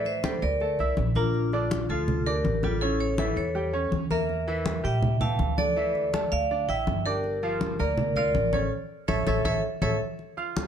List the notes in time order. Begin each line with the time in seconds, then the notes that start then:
Already playing: A2 E3 E4 E5
0.05 C5 E5, high conga
0.24 G3 G4 A4 C5 G5, high conga
0.42 D2 A#4 D5, high conga
0.60 A3 A4 A5, high conga
0.79 C2 E4 E5 E6, high conga
0.97 A#1, high conga
1.15 A#3 D4 F4 A#4 A#5, high conga
1.34 high conga
1.53 D3 D4 D5, high conga
1.71 high conga
1.89 D2 F3 F4 A4 F5, high conga
2.08 high conga, low conga
2.26 D4 G4 A#4 D5 D6, high conga
2.44 A1, high conga
2.63 G3 F4 G4 A4 G5, high conga
2.81 C#3 C#4 E4 A4 C#5, high conga
3.00 A4 C#5, high conga
3.18 E3 E4 A4 E5, high conga
3.36 E2 A4 C#5, high conga
3.55 G3 G4 G5, high conga
3.73 C#4 C#5 C#6, high conga
3.92 E2, high conga
4.11 A#3 A#4 E5 A#5, high conga
4.29 high conga
4.48 E3 E4 E5, high conga
4.66 high conga
4.84 A#2 G3 G4 E5 G5, high conga
5.02 high conga, low conga
5.21 E3 F5 G5 A5 E6, high conga, low conga
5.39 D2, high conga
5.58 D4 A4 D5 D6, high conga
5.76 E3 E4 E5, high conga
5.95 high conga
6.14 A3 A4 A5, high conga
6.32 D2 D5 F5, high conga
6.51 D4 D5 D6, high conga
6.68 A1 E4 E5 G5 E6, high conga
6.87 G1, high conga
7.05 D4 G4 A#4 D5 D6
7.24 high conga
7.43 F3 F4 F5, high conga
7.61 high conga
7.79 D2 A#3 A#4 D5 A#5, high conga
7.98 high conga, low conga
8.16 F4 A#4 D5 F5 F6, high conga, low conga
8.34 A1, high conga
8.53 C#4 A4 C#5 C#6, high conga
9.08 A1 A4 C#5 E5, high conga
9.27 A1 A4 C#5 E5, high conga
9.45 A1 A4 C#5 E5, high conga
9.82 A1 A4 C#5 E5, high conga
10.19 high conga
10.37 F4 F5 F6, high conga
10.57 high conga